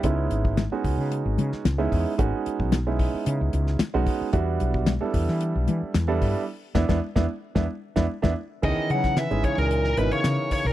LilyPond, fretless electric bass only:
\new Staff \with { instrumentName = "Fretless electric bass" } { \clef bass \time 4/4 \key cis \dorian \tempo 4 = 112 cis,8 gis,,8. r16 cis,16 cis8 gis,,16 cis16 r16 cis,8 e,16 r16 | gis,,16 r8 b,,4 r16 cis16 cis,16 cis,8 r16 b,,16 r8 | e,8 b,,8. r16 e,16 e8 b,,16 e16 r16 e,8 g,16 r16 | r8 e,16 e,16 r16 e,16 r8 e,16 r8 e,16 r16 e,16 r8 |
cis,16 r16 cis8. gis,,16 r16 cis,8. gis,,16 r16 cis16 r8 b,,16 | }